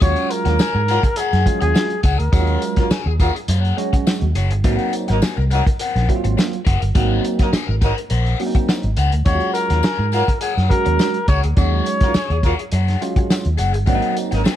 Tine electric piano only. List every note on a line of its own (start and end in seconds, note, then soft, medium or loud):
0.02 0.63 F#3 medium
0.02 0.63 G#3 medium
0.02 0.63 C#4 medium
0.02 0.63 F4 medium
1.46 1.53 F3 medium
1.46 1.93 G#3 medium
1.46 1.93 C#4 medium
1.46 1.93 F4 medium
1.53 1.96 F#3 medium
2.33 2.94 F#3 medium
2.33 2.94 G#3 medium
2.33 2.94 C#4 medium
2.33 2.40 D#4 medium
2.40 2.98 F4 medium
3.77 4.24 F#3 medium
3.77 4.24 G#3 medium
3.77 4.24 C#4 medium
3.77 4.24 F#4 loud
4.64 5.25 F#3 medium
4.64 5.26 A#3 medium
4.64 5.26 C4 medium
4.64 5.26 D#4 loud
6.09 6.55 F#3 medium
6.09 6.55 A#3 medium
6.09 6.55 C4 medium
6.09 6.16 E4 medium
6.16 6.59 F4 loud
6.96 7.57 F#3 medium
6.96 7.57 A#3 medium
6.96 7.57 C4 medium
6.96 7.57 D#4 loud
8.39 8.86 F#3 medium
8.39 8.86 A#3 medium
8.39 8.86 C4 medium
8.39 8.47 C#4 medium
8.47 8.89 D#4 medium
9.26 9.33 F3 medium
9.26 9.87 G#3 medium
9.26 9.87 C#4 medium
9.26 9.88 F4 medium
9.33 9.91 F#3 medium
10.71 11.17 F#3 medium
10.71 11.17 G#3 medium
10.71 11.17 C#4 medium
10.71 11.17 F#4 medium
11.57 12.18 F#3 medium
11.57 12.18 G#3 medium
11.57 12.18 C#4 medium
11.57 12.18 D#4 medium
13.01 13.47 F#3 medium
13.01 13.47 G#3 medium
13.01 13.48 C#4 medium
13.01 13.48 F4 medium
13.87 14.49 F#3 medium
13.87 14.49 A#3 medium
13.87 14.49 C4 loud
13.87 13.95 D4 medium
13.95 14.52 D#4 loud